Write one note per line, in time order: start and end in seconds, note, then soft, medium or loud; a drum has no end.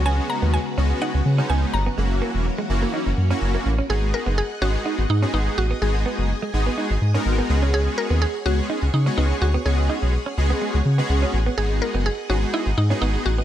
0.00 0.20 C#2 loud
0.00 1.96 C#3 medium
0.00 1.94 F#3 medium
0.00 0.59 G#3 loud
0.00 1.94 G#3 medium
0.00 0.59 B3 medium
0.00 1.96 B3 medium
0.00 0.59 C#4 medium
0.00 0.59 F#4 loud
0.00 3.86 F#4 medium
0.06 0.13 C#4 medium
0.06 0.30 G#5 loud
0.30 0.54 A#5 loud
0.30 muted clean electric guitar stroke soft
0.42 0.58 D#2 loud
0.42 0.49 B3 medium
0.54 1.03 G#5 loud
0.77 0.93 C#2 loud
0.77 1.18 G#3 medium
0.77 1.18 B3 medium
0.77 0.86 C#4 medium
0.77 1.18 C#4 medium
0.77 1.18 F#4 medium
1.02 1.10 D#4 medium
1.02 1.51 F#5 loud
1.15 1.22 C#2 medium
1.15 muted clean electric guitar stroke soft
1.26 1.41 C#3 loud
1.38 1.77 G#3 medium
1.38 1.77 B3 medium
1.38 1.45 C#4 medium
1.38 1.78 C#4 medium
1.38 1.78 D#4 medium
1.50 1.65 C#2 medium
1.50 1.58 B3 medium
1.50 1.60 G#5 loud
1.62 muted clean electric guitar stroke soft
1.74 1.89 G1 loud
1.74 3.38 A#5 loud
1.86 1.93 B3 medium
1.98 2.21 F#1 loud
1.98 3.88 E3 medium
1.98 3.88 F#3 medium
1.98 2.06 G#3 medium
1.98 2.45 A#3 medium
1.98 3.88 A#3 medium
1.98 2.45 C#4 medium
1.98 3.88 C#4 medium
1.98 2.45 E4 medium
1.98 2.45 F#4 medium
2.10 muted clean electric guitar stroke soft
2.22 2.30 A#3 medium
2.35 2.50 E1 loud
2.58 2.65 G#3 medium
2.69 2.85 F#1 loud
2.69 3.10 A#3 medium
2.69 3.10 C#4 medium
2.69 3.10 E4 medium
2.69 3.10 F#4 loud
2.69 muted clean electric guitar stroke soft
2.82 2.89 A#3 medium
2.94 3.02 D#4 medium
3.06 3.14 F#1 loud
3.06 muted clean electric guitar stroke soft
3.18 3.33 F#2 medium
3.30 3.69 A#3 loud
3.30 3.69 C#4 loud
3.30 3.37 C#4 medium
3.30 3.70 E4 medium
3.30 3.70 F#4 loud
3.42 3.57 F#1 loud
3.55 3.61 A#3 medium
3.66 3.81 A1 medium
3.66 muted clean electric guitar stroke soft
3.79 3.85 C#4 medium
3.89 4.13 G#1 loud
3.89 4.37 G#3 medium
3.89 3.97 G#3 medium
3.89 4.37 B3 medium
3.89 4.37 D#4 medium
3.89 4.37 F#4 medium
3.89 13.44 G#4 medium
3.89 4.14 G#4 loud
3.89 4.37 G#4 medium
3.89 7.46 D#5 medium
3.89 5.80 F#5 medium
4.14 4.38 A#4 loud
4.14 muted clean electric guitar stroke soft
4.26 4.42 F#1 loud
4.26 4.33 B3 medium
4.38 4.60 G#4 loud
4.61 4.77 G#1 loud
4.61 5.02 G#3 medium
4.61 5.02 B3 medium
4.61 4.70 C#4 medium
4.61 5.02 D#4 medium
4.61 5.02 F#4 medium
4.61 5.11 F#4 loud
4.61 5.02 G#4 medium
4.86 4.93 D#4 medium
4.98 5.06 G#1 medium
4.98 muted clean electric guitar stroke soft
5.10 5.25 G#2 loud
5.10 5.33 D#4 medium
5.22 5.61 G#3 medium
5.22 5.61 B3 medium
5.22 5.29 C#4 medium
5.22 5.62 D#4 medium
5.22 5.62 F#4 medium
5.22 5.62 G#4 medium
5.34 5.49 G#1 loud
5.34 5.42 B3 medium
5.34 5.58 D#4 medium
5.47 muted clean electric guitar stroke soft
5.58 5.73 A1 loud
5.58 5.82 F#4 loud
5.71 5.78 B3 medium
5.82 6.05 G#1 loud
5.82 6.29 G#3 medium
5.82 5.90 G#3 medium
5.82 6.29 B3 medium
5.82 6.29 D#4 medium
5.82 6.29 F#4 medium
5.82 7.22 G#4 medium
5.82 6.29 G#4 medium
5.82 7.48 G#5 medium
5.95 muted clean electric guitar stroke soft
6.06 6.14 B3 medium
6.18 6.34 F#1 medium
6.42 6.49 G#3 medium
6.53 6.69 G#1 loud
6.53 6.94 G#3 medium
6.53 6.94 B3 medium
6.53 6.94 D#4 medium
6.53 6.94 F#4 medium
6.53 6.94 G#4 loud
6.53 muted clean electric guitar stroke soft
6.67 6.73 B3 medium
6.78 6.86 D#4 medium
6.91 6.98 G#1 loud
6.91 muted clean electric guitar stroke soft
7.02 7.17 G#2 loud
7.14 7.48 G#3 loud
7.14 7.48 B3 medium
7.14 7.21 C#4 medium
7.14 7.50 D#4 loud
7.14 7.49 F#4 loud
7.14 7.50 A#4 loud
7.26 7.41 G#1 medium
7.38 7.45 B3 medium
7.49 7.89 C#2 loud
7.49 8.27 G#3 loud
7.49 8.27 B3 medium
7.49 8.27 C#4 medium
7.49 8.27 F#4 medium
7.49 8.27 G#4 loud
7.49 11.54 C#5 medium
7.49 13.44 F#5 medium
7.49 muted clean electric guitar stroke soft
7.63 7.69 C#4 medium
7.74 7.82 C#4 medium
7.74 7.85 G#4 loud
7.98 8.20 A#4 loud
7.98 muted clean electric guitar stroke soft
8.10 8.26 D#2 loud
8.10 8.17 B3 medium
8.22 8.46 G#4 loud
8.45 8.61 C#2 medium
8.45 8.86 G#3 medium
8.45 8.86 B3 medium
8.45 8.86 C#4 medium
8.45 8.53 C#4 medium
8.45 8.86 F#4 medium
8.45 8.95 F#4 loud
8.45 8.86 G#4 loud
8.70 8.77 D#4 medium
8.82 8.90 C#2 loud
8.82 muted clean electric guitar stroke soft
8.94 9.09 C#3 loud
8.94 9.04 D#4 medium
9.06 9.45 G#3 medium
9.06 9.45 B3 medium
9.06 9.13 C#4 medium
9.06 9.45 C#4 medium
9.06 9.45 F#4 medium
9.06 9.46 G#4 loud
9.18 9.33 C#2 medium
9.18 9.25 B3 medium
9.18 9.42 D#4 medium
9.30 muted clean electric guitar stroke soft
9.42 9.57 D2 loud
9.42 9.66 F#4 loud
9.54 9.61 B3 medium
9.65 9.89 C#2 loud
9.65 10.13 G#3 medium
9.65 10.13 B3 medium
9.65 9.73 C#4 medium
9.65 10.13 C#4 medium
9.65 10.13 F#4 medium
9.65 11.06 G#4 medium
9.65 10.13 G#4 medium
9.78 muted clean electric guitar stroke soft
9.90 9.97 D#4 medium
10.02 10.18 B1 loud
10.26 10.33 C#4 medium
10.37 10.53 C#2 loud
10.37 10.78 G#3 medium
10.37 10.78 B3 medium
10.37 10.78 C#4 medium
10.37 10.78 F#4 medium
10.37 10.78 G#4 loud
10.37 muted clean electric guitar stroke soft
10.50 10.57 B3 medium
10.62 10.69 G#3 medium
10.74 10.82 C#2 medium
10.74 muted clean electric guitar stroke soft
10.86 11.01 C#3 loud
10.98 11.37 G#3 loud
10.98 11.37 B3 medium
10.98 11.05 B3 medium
10.98 11.37 C#4 loud
10.98 11.38 F#4 medium
10.98 11.38 G#4 loud
11.10 11.25 C#2 loud
11.22 11.29 C#4 medium
11.34 11.49 A1 loud
11.34 muted clean electric guitar stroke soft
11.46 11.53 B3 medium
11.57 11.81 G#1 loud
11.57 12.05 G#3 medium
11.57 11.65 G#3 medium
11.57 12.05 B3 medium
11.57 12.05 D#4 medium
11.57 12.05 F#4 medium
11.57 11.82 G#4 loud
11.57 12.05 G#4 medium
11.57 13.44 D#5 medium
11.82 12.06 A#4 loud
11.82 muted clean electric guitar stroke soft
11.94 12.10 F#1 loud
11.94 12.01 B3 medium
12.06 12.17 G#4 loud
12.29 12.45 G#1 medium
12.29 12.70 G#3 medium
12.29 12.70 B3 medium
12.29 12.37 C#4 medium
12.29 12.70 D#4 medium
12.29 12.54 F#4 loud
12.29 12.70 F#4 medium
12.29 12.70 G#4 loud
12.54 12.61 D#4 medium
12.54 12.78 E4 medium
12.66 12.74 G#1 loud
12.66 muted clean electric guitar stroke soft
12.78 12.93 G#2 loud
12.78 13.00 D#4 medium
12.90 13.29 G#3 medium
12.90 13.29 B3 medium
12.90 12.97 C#4 medium
12.90 13.29 D#4 medium
12.90 13.30 F#4 medium
12.90 13.30 G#4 loud
13.02 13.17 G#1 loud
13.02 13.09 B3 medium
13.02 13.24 D#4 loud
13.14 muted clean electric guitar stroke soft
13.26 13.41 A1 loud
13.26 13.36 F#4 loud
13.38 13.44 B3 medium